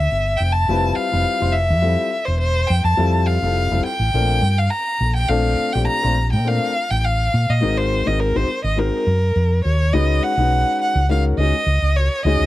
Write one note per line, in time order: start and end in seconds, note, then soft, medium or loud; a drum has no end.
0.00 0.39 E5 medium
0.12 0.37 G1 medium
0.37 0.65 F1 medium
0.37 0.47 F4 soft
0.37 0.47 C5 soft
0.37 0.54 G5 medium
0.52 0.96 A5 medium
0.68 0.93 F1 medium
0.68 1.06 G3 medium
0.68 1.06 C4 medium
0.68 1.06 E4 medium
0.68 1.06 F4 medium
0.68 1.07 B4 medium
0.95 1.53 F5 medium
1.11 1.24 F1 medium
1.11 1.36 G3 medium
1.11 1.37 C4 medium
1.11 1.37 E4 medium
1.11 1.37 F4 medium
1.11 1.37 B4 medium
1.40 1.72 F1 medium
1.40 1.52 G3 medium
1.40 1.52 C4 medium
1.40 1.52 E4 medium
1.40 1.52 F4 medium
1.40 1.53 C5 medium
1.52 1.61 F4 soft
1.52 2.27 E5 medium
1.56 1.63 B4 soft
1.70 1.95 F2 medium
1.82 2.08 G3 medium
1.82 2.08 C4 medium
1.82 2.08 E4 medium
1.82 2.08 F4 medium
1.82 2.08 A4 medium
2.11 2.19 F4 soft
2.11 2.20 A4 soft
2.25 2.64 E1 medium
2.25 2.39 C5 medium
2.40 2.68 C5 medium
2.67 2.84 F2 medium
2.67 2.77 F4 soft
2.67 2.77 B4 soft
2.67 2.84 G5 medium
2.84 2.96 F2 medium
2.84 3.28 A5 medium
2.97 3.37 F2 medium
2.97 3.36 G3 medium
2.97 3.36 C4 medium
2.97 3.36 E4 medium
2.97 3.36 F4 medium
2.97 3.37 A4 medium
3.26 3.85 F5 medium
3.42 3.68 F1 medium
3.42 3.68 G3 medium
3.42 3.67 C4 medium
3.42 3.68 E4 medium
3.42 3.68 F4 medium
3.42 3.68 A4 medium
3.71 3.83 F1 medium
3.71 3.83 G3 medium
3.71 3.83 C4 medium
3.71 3.83 E4 medium
3.71 3.83 F4 medium
3.71 3.84 A4 medium
3.85 3.93 F4 soft
3.85 3.93 A4 soft
3.85 4.59 G5 medium
4.00 4.12 A1 medium
4.14 4.39 A#1 medium
4.14 4.40 A3 medium
4.14 4.40 C4 medium
4.14 4.40 D4 medium
4.14 4.40 F4 medium
4.14 4.40 A#4 medium
4.42 4.68 G2 medium
4.42 4.51 F4 soft
4.42 4.52 A#4 soft
4.58 4.72 F5 medium
4.70 5.15 A#5 medium
5.01 5.26 A#1 medium
5.01 5.09 F4 soft
5.01 5.10 A4 soft
5.16 5.30 G5 medium
5.29 5.55 A#1 loud
5.29 5.67 A3 medium
5.29 5.68 C4 medium
5.29 5.68 D4 medium
5.29 5.68 F4 medium
5.29 5.68 A4 loud
5.29 5.74 F5 medium
5.73 5.87 A#1 medium
5.73 5.99 A3 medium
5.73 5.99 C4 medium
5.73 5.99 D4 medium
5.73 5.99 F4 medium
5.73 5.99 G4 medium
5.73 5.87 G5 medium
5.87 6.29 A#5 loud
6.02 6.35 A#1 medium
6.02 6.14 A3 medium
6.02 6.15 C4 medium
6.02 6.15 D4 medium
6.02 6.15 F4 medium
6.02 6.15 C5 medium
6.16 6.24 F4 soft
6.16 6.25 G4 soft
6.33 6.58 A#2 medium
6.33 6.49 G5 medium
6.45 6.71 A3 medium
6.45 6.71 C4 medium
6.45 6.71 D4 medium
6.45 6.71 F4 medium
6.45 6.71 A#4 medium
6.45 6.92 F5 medium
6.75 6.83 F4 soft
6.75 6.83 A#4 soft
6.90 7.27 A1 medium
6.90 7.06 G5 medium
7.04 7.51 F5 medium
7.33 7.47 A#2 medium
7.33 7.40 F4 soft
7.33 7.41 A#4 soft
7.50 7.61 A#2 medium
7.50 7.79 D#5 medium
7.61 8.01 G#1 medium
7.61 7.99 G#3 medium
7.61 8.00 C4 medium
7.61 8.00 D#4 medium
7.61 8.00 F#4 medium
7.61 8.00 A#4 medium
7.77 8.09 C5 medium
8.06 8.32 G#1 medium
8.06 8.31 G#3 medium
8.06 8.31 C4 medium
8.06 8.31 D#4 medium
8.06 8.31 F#4 medium
8.06 8.31 A#4 medium
8.06 8.21 D#5 medium
8.19 8.37 A#4 medium
8.35 8.47 G#1 medium
8.35 8.47 G#3 medium
8.35 8.47 C4 medium
8.35 8.47 D#4 medium
8.35 8.47 F#4 medium
8.35 8.64 C5 medium
8.35 8.48 C5 medium
8.48 8.56 F#4 soft
8.48 8.57 A#4 soft
8.48 muted fingered electric bass stroke soft
8.64 8.89 G#1 medium
8.64 8.80 D#5 medium
8.76 9.02 G#3 medium
8.76 9.03 C4 medium
8.76 9.03 D#4 medium
8.76 9.03 F#4 medium
8.76 9.03 A#4 medium
8.76 9.64 A#4 medium
9.07 9.33 F#2 medium
9.07 9.15 F#4 soft
9.07 9.15 A#4 soft
9.36 9.62 F2 medium
9.64 9.91 D#2 medium
9.64 9.72 F#4 soft
9.64 9.73 A#4 soft
9.64 9.94 C#5 medium
9.93 10.19 C#2 medium
9.93 10.31 G#3 medium
9.93 10.31 C#4 medium
9.93 10.31 D#4 medium
9.93 10.32 F#4 medium
9.93 10.32 B4 medium
9.93 10.24 D#5 medium
10.23 10.81 F#5 medium
10.37 10.63 B1 medium
10.37 10.99 G#3 medium
10.37 11.00 C#4 medium
10.37 11.00 D#4 medium
10.37 11.00 F#4 medium
10.37 11.00 B4 medium
10.81 11.08 F#5 medium
10.95 11.32 C#2 medium
11.09 11.34 G#3 medium
11.09 11.34 C#4 medium
11.09 11.35 D#4 medium
11.09 11.35 F#4 medium
11.09 11.35 A#4 medium
11.09 11.23 F5 medium
11.38 11.52 C#2 medium
11.38 11.52 G#3 medium
11.38 11.52 C#4 medium
11.38 11.53 D#4 medium
11.38 11.53 F#4 medium
11.38 11.53 G#4 medium
11.38 11.97 D#5 medium
11.54 11.60 F#4 soft
11.54 11.61 B4 soft
11.66 11.80 C#2 medium
11.82 12.07 C#2 medium
11.96 12.05 F#4 soft
11.96 12.06 A#4 soft
11.96 12.25 C#5 medium
12.25 12.38 C#2 medium
12.25 12.46 G#3 medium
12.25 12.46 C#4 medium
12.25 12.46 D#4 medium
12.25 12.46 F#4 medium
12.25 12.46 G#4 medium
12.25 12.46 D#5 medium
12.40 12.46 C#2 medium